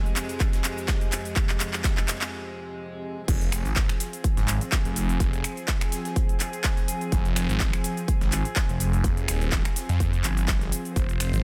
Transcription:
Already playing: string section F2 C3 G#3
0.06 shaker
0.16 snare, clap, closed hi-hat, open hi-hat, shaker
0.29 closed hi-hat, shaker
0.40 kick, clap, closed hi-hat, shaker
0.53 snare, closed hi-hat, shaker
0.64 clap, closed hi-hat, open hi-hat, shaker
0.78 shaker
0.88 kick, snare, clap, closed hi-hat, shaker
1.01 closed hi-hat, shaker
1.12 clap, closed hi-hat, open hi-hat, shaker
1.25 closed hi-hat, shaker
1.36 kick, clap, closed hi-hat, shaker
1.49 clap, closed hi-hat, shaker
1.60 clap, closed hi-hat, open hi-hat, shaker
1.73 clap, closed hi-hat, shaker
1.84 kick, snare, clap, closed hi-hat, shaker
1.97 clap, shaker
2.08 snare, clap, closed hi-hat, open hi-hat, shaker
2.21 snare, clap, closed hi-hat, shaker
3.28 detuned saw bass F1, string section F3 C4 G#4, kick, closed hi-hat, crash, shaker
3.41 closed hi-hat, shaker
3.52 detuned saw bass F1, finger snap, closed hi-hat, open hi-hat, shaker
3.65 detuned saw bass G#1, closed hi-hat, shaker
3.76 kick, snare, clap, closed hi-hat, shaker
3.89 finger snap, closed hi-hat, shaker
4.00 snare, closed hi-hat, open hi-hat, shaker
4.13 closed hi-hat, shaker
4.24 kick, closed hi-hat, shaker
4.37 detuned saw bass G#1, snare, closed hi-hat, shaker
4.48 clap, closed hi-hat, open hi-hat, shaker
4.61 closed hi-hat, shaker
4.72 kick, snare, clap, closed hi-hat, shaker
4.85 detuned saw bass F1, closed hi-hat, shaker
4.96 closed hi-hat, open hi-hat, shaker
5.09 closed hi-hat, shaker
5.20 detuned saw bass F1, kick, closed hi-hat, shaker
5.33 closed hi-hat, shaker
5.44 finger snap, closed hi-hat, open hi-hat, shaker
5.57 closed hi-hat, shaker
5.68 kick, snare, clap, closed hi-hat, shaker
5.81 finger snap, closed hi-hat, shaker
5.92 snare, closed hi-hat, open hi-hat, shaker
6.05 snare, closed hi-hat, shaker
6.16 kick, closed hi-hat, shaker
6.29 closed hi-hat, shaker
6.40 clap, closed hi-hat, open hi-hat, shaker
6.53 closed hi-hat, shaker
6.64 kick, snare, clap, closed hi-hat, shaker
6.77 snare, closed hi-hat, shaker
6.88 closed hi-hat, open hi-hat, shaker
7.01 closed hi-hat, shaker
7.12 detuned saw bass F1, kick, closed hi-hat, shaker
7.25 closed hi-hat, shaker
7.36 detuned saw bass F1, finger snap, closed hi-hat, open hi-hat, shaker
7.49 detuned saw bass G#1, closed hi-hat, shaker
7.60 kick, snare, clap, closed hi-hat, shaker
7.73 finger snap, closed hi-hat, shaker
7.84 snare, closed hi-hat, open hi-hat, shaker
7.97 closed hi-hat, shaker
8.08 kick, closed hi-hat, shaker
8.21 detuned saw bass G#1, snare, closed hi-hat, shaker
8.32 clap, closed hi-hat, open hi-hat, shaker
8.45 closed hi-hat, shaker
8.56 kick, snare, clap, closed hi-hat, shaker
8.69 detuned saw bass F1, closed hi-hat, shaker
8.80 closed hi-hat, open hi-hat, shaker
8.93 closed hi-hat, shaker
9.04 detuned saw bass F1, kick, closed hi-hat, shaker
9.17 closed hi-hat, shaker
9.28 detuned saw bass D#1, finger snap, closed hi-hat, open hi-hat, shaker
9.41 closed hi-hat, shaker
9.52 kick, snare, clap, closed hi-hat, shaker
9.65 finger snap, closed hi-hat, shaker
9.76 snare, closed hi-hat, open hi-hat, shaker
9.89 detuned saw bass F2, snare, closed hi-hat, shaker
10.00 kick, closed hi-hat, shaker
10.13 closed hi-hat, shaker
10.24 detuned saw bass G1, clap, closed hi-hat, open hi-hat, shaker
10.37 closed hi-hat, shaker
10.48 kick, snare, clap, closed hi-hat, shaker
10.61 snare, closed hi-hat, shaker
10.72 closed hi-hat, open hi-hat, shaker
10.85 closed hi-hat, shaker
10.96 detuned saw bass F1, string section C5, kick, closed hi-hat, shaker
11.09 closed hi-hat, shaker
11.20 detuned saw bass F1, finger snap, closed hi-hat, open hi-hat, ride, shaker
11.33 detuned saw bass G#1, closed hi-hat, shaker

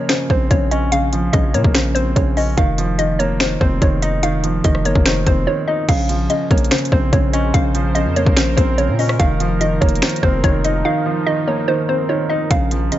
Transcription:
Already playing: felt piano C#3 F3 A#3
0.09 felt piano C#3, synth pluck C5, finger snap, snare, closed hi-hat
0.30 808-style bass A#1, felt piano C4, synth pluck C5, kick
0.51 808-style bass A#1, felt piano C#3, synth pluck C#5, kick, closed hi-hat
0.71 felt piano C#4, synth pluck D#5, closed hi-hat
0.92 felt piano C#3, synth pluck F5, closed hi-hat
1.13 felt piano F3, closed hi-hat
1.33 808-style bass A#1, felt piano C#3, synth pluck D#5, kick, closed hi-hat
1.54 808-style bass A#2, felt piano A#3, synth pluck C#5, closed hi-hat
1.64 808-style bass A#1, kick
1.75 felt piano C#3, synth pluck C5, finger snap, snare, closed hi-hat
1.95 felt piano C4, synth pluck C5, closed hi-hat
2.16 808-style bass A#1, felt piano C#3, synth pluck C#5, kick, closed hi-hat
2.37 felt piano C#4, synth pluck D#5, open hi-hat
2.57 808-style bass F1, felt piano D#3, synth pluck F5, kick, closed hi-hat
2.78 felt piano F3, closed hi-hat
2.99 felt piano D#3, synth pluck D#5, closed hi-hat
3.19 felt piano A#3, synth pluck C#5, closed hi-hat
3.40 felt piano D#3, synth pluck C5, finger snap, snare, closed hi-hat
3.61 808-style bass F1, felt piano C4, synth pluck C5, kick
3.82 808-style bass F1, felt piano D#3, synth pluck C#5, kick, closed hi-hat
4.02 felt piano D#4, synth pluck D#5, closed hi-hat
4.23 felt piano D#3, synth pluck F5, closed hi-hat
4.44 felt piano F3, closed hi-hat
4.64 808-style bass F1, felt piano D#3, synth pluck D#5, kick, closed hi-hat
4.75 cross-stick
4.85 808-style bass F#1, felt piano A#3, synth pluck C#5, closed hi-hat
4.95 808-style bass F1, kick
5.06 felt piano D#3, synth pluck C5, finger snap, snare, closed hi-hat
5.27 808-style bass F1, felt piano C4, synth pluck C5, kick, closed hi-hat
5.47 felt piano D#3, synth pluck C#5
5.68 felt piano D#4, synth pluck D#5
5.89 808-style bass A#1, analog synth pad C#3 A#4 C5, felt piano C#3, synth pluck F5, kick, closed hi-hat, crash
6.09 felt piano F3, closed hi-hat
6.30 felt piano C#3, synth pluck D#5, closed hi-hat
6.51 808-style bass A#1, felt piano A#3, synth pluck C#5, kick, closed hi-hat
6.58 closed hi-hat
6.64 closed hi-hat
6.71 felt piano C#3, synth pluck C5, finger snap, snare, closed hi-hat
6.78 closed hi-hat
6.85 closed hi-hat
6.92 808-style bass A#1, felt piano C4, synth pluck C5, kick
7.13 808-style bass A#1, felt piano C#3, synth pluck C#5, kick, closed hi-hat
7.33 felt piano C#4, synth pluck D#5, closed hi-hat
7.54 808-style bass A#1, felt piano C#3, synth pluck F5, kick, closed hi-hat
7.75 felt piano F3, closed hi-hat
7.95 felt piano C#3, synth pluck D#5, closed hi-hat
8.06 808-style bass F2
8.16 felt piano A#3, synth pluck C#5, closed hi-hat
8.26 808-style bass A#1, kick
8.37 felt piano C#3, synth pluck C5, finger snap, snare, closed hi-hat
8.57 808-style bass A#1, felt piano C4, synth pluck C5, kick, closed hi-hat
8.78 felt piano C#3, synth pluck C#5, closed hi-hat
8.89 808-style bass A#2
8.99 felt piano C#4, synth pluck D#5, open hi-hat
9.09 cross-stick
9.19 808-style bass F1, felt piano D#3, analog synth pad F3 D#4, synth pluck F5, kick, closed hi-hat
9.40 felt piano F3, closed hi-hat
9.61 felt piano D#3, synth pluck D#5, closed hi-hat
9.81 808-style bass F1, felt piano A#3, synth pluck C#5, kick, closed hi-hat
9.89 closed hi-hat
9.95 closed hi-hat
10.02 felt piano D#3, synth pluck C5, finger snap, snare, closed hi-hat
10.09 closed hi-hat
10.16 closed hi-hat
10.23 808-style bass F1, felt piano C4, synth pluck C5, kick
10.44 808-style bass F1, felt piano D#3, synth pluck C#5, kick, closed hi-hat
10.64 felt piano D#4, synth pluck D#5, closed hi-hat
10.85 felt piano D#3, synth pluck F5
11.06 felt piano F3
11.27 felt piano D#3, synth pluck D#5
11.47 felt piano A#3, synth pluck C#5
11.68 felt piano D#3, synth pluck C5
11.89 felt piano C4, synth pluck C5
12.09 felt piano D#3, synth pluck C#5
12.30 felt piano D#4, synth pluck D#5
12.51 808-style bass A#1, analog synth pad C#3 C5, felt piano C#3, synth pluck F5, kick, closed hi-hat
12.71 felt piano F3, closed hi-hat
12.92 felt piano C#3, synth pluck D#5, closed hi-hat

